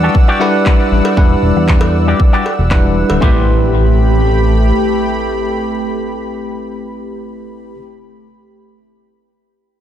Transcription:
Already playing: tine electric piano G3 D4 E4 B4 F#5, analog synth pad D5 F#5 E6
0.03 clean electric guitar F#4 G4 A4
0.15 kick
0.28 clean electric guitar F#4 G4 D5
0.39 tine electric piano G3 D4 E4 B4 F#5, cowbell
0.66 muted clean electric guitar stroke, kick, clap
0.79 muted clean electric guitar stroke
0.92 analog synth bass A1
1.05 cowbell
1.16 analog synth bass E1, tine electric piano G3 D4 E4 B4 F#5, muted clean electric guitar stroke, kick
1.30 muted clean electric guitar stroke
1.43 analog synth bass E1
1.56 analog synth bass E2, muted clean electric guitar stroke
1.68 muted clean electric guitar stroke, kick, clap
1.81 cowbell
2.07 clean electric guitar F#4 G4 D5
2.20 kick
2.33 clean electric guitar F#4 G4 D5, clap
2.46 cowbell
2.59 analog synth bass E1
2.70 tine electric piano G3 D4 E4 B4 F#5, muted clean electric guitar stroke, kick, clap
2.84 muted clean electric guitar stroke
3.10 analog synth bass D1, cowbell
3.20 analog synth bass A1, tine electric piano A3 C4 E4 G4 B4, analog synth pad A3 G4 B5, clean electric guitar C4 G4, kick, impact
3.24 clean electric guitar B4

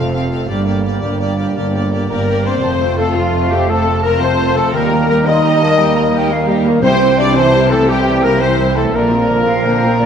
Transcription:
Already playing: double bass section F1, cello section F2, harp F2 C3 C4 F4 A4 C5, trombone section C3 F3, french horn section A3 F4, viola section C4, violin section A4 F5
0.13 viola section C4, violin section A4 F5, harp C5
0.31 viola section C4, violin section A4 F5, harp A4
0.47 double bass section G1, cello section G2, harp G2, trombone section D3 G3, viola section A#3, french horn section A#3 D4, violin section G4 D5
0.65 viola section A#3, harp A#3, violin section G4 D5
0.83 viola section A#3, violin section G4 D5
1.01 double bass section G1, cello section G2, viola section A#3, violin section G4 D5, harp G4
1.20 viola section A#3, violin section G4 D5, harp A#4
1.38 viola section A#3, violin section G4 D5, harp G4
1.55 double bass section G1, cello section G2, harp D3, viola section A#3, violin section G4 D5
1.73 viola section A#3, harp A#3, violin section G4 D5
1.91 viola section A#3, harp D4, violin section G4 D5
2.09 double bass section G1, cello section G2, viola section A#3, french horn section A#3, harp G4, violin section G4 A#4 D5, clarinet A#4, trumpet section A#4
2.28 viola section A#3, violin section G4 D5
2.44 viola section A#3, french horn section C4, violin section G4 C5 D5, harp G4, clarinet C5, trumpet section C5
2.61 double bass section F1, harp F2, cello section F2, trombone section F3 A3, viola section A3, violin section C4 F4, flute section A5
2.73 harp C3
2.79 viola section F3 C4, harp A3, violin section A3 A4, flute section G5
2.90 harp F4
2.97 viola section A3, french horn section A3, violin section C4 F4 A4, clarinet A4, trumpet section A4, harp A4, flute section F5
3.06 harp F4
3.14 viola section F3 C4, trombone section F3 A3, french horn section F3, violin section A3 F4 A4, clarinet F4, trumpet section F4, harp F5
3.24 harp A5
3.31 viola section A3, violin section C4 F4, harp F5
3.41 harp A5
3.50 viola section F3 C4, french horn section G3, violin section A3 G4 A4, clarinet G4, trumpet section G4, harp F5
3.60 harp A5
3.68 trombone section F3 A3, french horn section A3, viola section A3, violin section C4 F4 A4, trumpet section A4, clarinet A4, harp F5, flute section A5
3.86 viola section F3 C4, violin section A3 A4
3.95 harp A4
4.02 viola section A3, french horn section A#3, violin section C4 F4 A#4, harp F4, clarinet A#4, trumpet section A#4
4.13 harp A3
4.20 harp C3, viola section F3 C4, trombone section F3 A3, violin section A3 A4 C5, french horn section C4, clarinet C5, trumpet section C5
4.30 harp A3
4.39 harp C3, viola section A3, violin section C4 F4
4.47 harp A3
4.53 harp C3, viola section F3 C4, french horn section A3, violin section A3 A4, clarinet A4, trumpet section A4
4.71 double bass section D#2, cello section D#2, harp D#3, viola section G3, trombone section G3 A#3, french horn section A#3, violin section D#4 G4 A#4, trumpet section A#4, clarinet A#4, flute section G5
4.80 harp D#4
4.90 viola section D#3 A#3, harp G3, violin section A#3 A#4
4.98 harp G4
5.08 viola section G3, french horn section A#3, violin section D#4 G4 A#4, clarinet A#4, trumpet section A#4
5.15 harp G4
5.24 viola section D#3 A#3, trombone section G3 A#3, violin section A#3 A#4 D#5, french horn section D#4, clarinet D#5, trumpet section D#5, harp G5, flute section C6
5.32 harp A#5
5.42 viola section G3, violin section D#4 G4, flute section A#5
5.51 harp A#5
5.60 viola section D#3 A#3, violin section A#3 A#4, harp G5, flute section A5
5.77 viola section G3, violin section D#4 G4, harp G5, flute section G5
5.85 harp A#5
5.94 viola section D#3 A#3, violin section A#3 A#4, harp G5, flute section A#5
6.03 harp G4
6.12 harp G3, viola section G3, violin section D#4 G4, flute section G5
6.29 viola section D#3 A#3, harp G3, violin section A#3 A#4, flute section F5
6.39 harp D#4
6.47 viola section G3, harp G3, violin section D#4 G4, flute section D#5
6.56 harp D#4
6.64 viola section D#3 A#3, harp G3, violin section A#3 A#4, flute section F5
6.73 harp D#4
6.81 double bass section C2, harp C3, timpani C3, cello section C3, trombone section E3 C4, viola section G3, french horn section C4, violin section E4 G4 C5, clarinet C5, trumpet section C5, flute section G5
6.91 harp C4
7.00 viola section E3, harp G3, violin section C4 E4
7.16 viola section G3, french horn section D4, violin section E4 G4 D5, harp C5, trumpet section D5, clarinet D5
7.34 viola section E3, trombone section E3 C4, french horn section C4, violin section C4 E4 C5, clarinet C5, trumpet section C5, harp E5, flute section A5
7.53 viola section G3, violin section E4 G4
7.60 harp C6
7.69 viola section E3, french horn section A3, violin section C4 E4 A4, trumpet section A4, clarinet A4, harp E5
7.77 harp C6
7.85 trombone section E3 C4, viola section G3, french horn section G3, violin section E4 G4, trumpet section G4, clarinet G4, harp E5, flute section G5
7.95 harp C6
8.03 viola section E3, violin section C4 E4, harp E5
8.12 harp G4
8.19 viola section G3, french horn section A#3, harp E4, violin section E4 A#4, trumpet section A#4
8.23 violin section G4, clarinet A#4
8.29 harp G3
8.39 viola section E3, trombone section E3 C4, violin section C4 E4 C5, french horn section C4, trumpet section C5, clarinet C5, flute section E5
8.46 harp G3
8.57 viola section G3, violin section E4 G4
8.64 harp G3
8.74 viola section E3, french horn section A3, harp C4, violin section C4 E4 A4, trumpet section A4, clarinet A4
8.82 harp G3
8.92 double bass section A#1, harp A#2, cello section A#2, viola section D3 A#3, trombone section F3 C4, french horn section A#3, violin section A#3 D4 A#4, trumpet section A#4, clarinet A#4, flute section D5
9.01 harp F3
9.11 viola section F3 C4, violin section C4 F4
9.28 viola section D3 A#3, violin section A#3 D4, harp C5
9.37 harp A#4
9.45 viola section F3 C4, violin section C4 F4, harp D5, flute section F5
9.55 harp C6
9.63 viola section D3 A#3, violin section A#3 D4, flute section C5, harp D5
9.82 viola section F3 C4, violin section C4 F4, harp D5
9.90 harp C6
9.99 viola section D3 A#3, violin section A#3 D4, flute section D5, harp D5

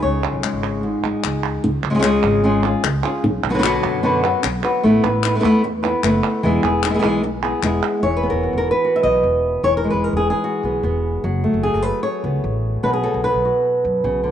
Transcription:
Already playing: nylon-string guitar G#3
0.02 upright bass C#2, nylon-string guitar C#3 C#5
0.23 nylon-string guitar F4, clap
0.33 upright bass B1
0.42 nylon-string guitar G#3, clap
0.53 upright bass G#1
0.63 clap
0.83 nylon-string guitar G#2
1.03 upright bass G#1, nylon-string guitar G#3, clap
1.23 upright bass C#2, clap
1.44 clap
1.64 upright bass C#2, muted nylon-string guitar stroke
1.83 upright bass C#2, clap
1.90 nylon-string guitar G#3 C#4 F4 G#4
1.95 nylon-string guitar G#3 C#4 F4 G#4
1.99 nylon-string guitar G#3 C#4 F4 G#4
2.03 nylon-string guitar C#3 G#3 C#4 F4 G#4, clap
2.24 upright bass G#1
2.44 nylon-string guitar C#3 G#3 C#4 F4 G#4
2.64 nylon-string guitar C#4 F4 G#4
2.84 upright bass C#2, muted nylon-string guitar stroke, clap
3.04 nylon-string guitar C#4 F4 G#4, clap
3.24 upright bass B1, muted nylon-string guitar stroke
3.44 upright bass B1, clap
3.49 nylon-string guitar D3 F#3 B3 F#4 B4
3.54 nylon-string guitar D3 F#3 B3 F#4 B4
3.59 nylon-string guitar D3 F#3 B3 F#4 B4
3.63 nylon-string guitar B2 D3 F#3 B3 F#4 B4, clap
3.83 upright bass F#2, clap
4.03 nylon-string guitar B2 D3 F#3 B3 F#4 B4
4.23 nylon-string guitar F#3 B3 F#4 B4
4.43 upright bass B1, muted nylon-string guitar stroke, clap
4.64 nylon-string guitar F#3 B3 F#4 B4
4.83 upright bass A1, nylon-string guitar A3 B3 E4 B4
5.04 upright bass A1, nylon-string guitar B3 E4 B4, clap
5.23 nylon-string guitar B3 E4 B4, clap
5.35 nylon-string guitar A3 B3 E4 B4
5.39 nylon-string guitar A3 B3 E4 B4
5.44 upright bass E2, nylon-string guitar A3 B3 E4 B4, clap
5.64 muted nylon-string guitar stroke
5.83 nylon-string guitar B3 E4 B4, clap
6.03 upright bass F#1, nylon-string guitar A3 B3 E4 B4, clap
6.24 clap
6.43 upright bass E1, nylon-string guitar E3 G#3 B3 E4 G#4
6.63 upright bass E1, nylon-string guitar B3 E4 G#4
6.83 nylon-string guitar B3 E4 G#4, clap
6.90 nylon-string guitar G#3 B3 E4 G#4
6.94 nylon-string guitar G#3 B3 E4 G#4
6.99 nylon-string guitar G#3 B3 E4 G#4
7.03 upright bass B1, nylon-string guitar E3 G#3 B3 E4 G#4
7.23 muted nylon-string guitar stroke
7.43 nylon-string guitar B3 E4 G#4, clap
7.63 upright bass E1, nylon-string guitar G#3 B3 E4 G#4, clap
7.83 clap
8.03 upright bass E1, nylon-string guitar E3 C#5
8.17 nylon-string guitar B4
8.23 nylon-string guitar B3
8.30 upright bass E1, nylon-string guitar A#4
8.43 nylon-string guitar F#4
8.53 upright bass E1
8.58 nylon-string guitar A#4
8.71 nylon-string guitar B4
8.85 nylon-string guitar F#4
8.96 nylon-string guitar E5
9.03 upright bass B1, nylon-string guitar D#5
9.23 upright bass E1
9.63 upright bass E1, nylon-string guitar E3 C#5
9.77 nylon-string guitar A#4
9.84 nylon-string guitar G#3
9.90 upright bass E1, nylon-string guitar B4
10.04 nylon-string guitar A#4
10.13 upright bass E1, nylon-string guitar G#4
10.30 nylon-string guitar G#4
10.44 nylon-string guitar F#4
10.63 upright bass B1, nylon-string guitar B3
10.83 upright bass E1, nylon-string guitar B3
11.24 upright bass F#1, nylon-string guitar F#3
11.44 nylon-string guitar A3
11.54 upright bass F#1
11.63 nylon-string guitar G#4
11.74 upright bass F#1, nylon-string guitar A4
11.82 nylon-string guitar B4
12.03 nylon-string guitar C#5
12.24 upright bass C#2, nylon-string guitar B3
12.44 upright bass A1
12.83 upright bass B1, nylon-string guitar B2 B4
12.93 nylon-string guitar G#4
13.04 nylon-string guitar F#3 A4
13.14 upright bass B1
13.24 nylon-string guitar B4
13.34 upright bass B1
13.45 nylon-string guitar F#4
13.85 upright bass F#2
14.04 upright bass B1, nylon-string guitar C#3
14.24 nylon-string guitar D3

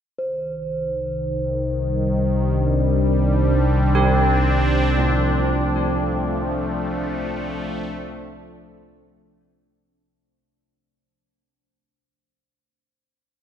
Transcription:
0.17 synth drone C2 C3, analog synth pad D#3, singing bowl C5
1.71 analog synth pad G3
2.40 analog synth pad C4 D4
3.95 church bells G4
4.98 church bells A2
5.07 analog synth pad F3
5.60 analog synth pad A3

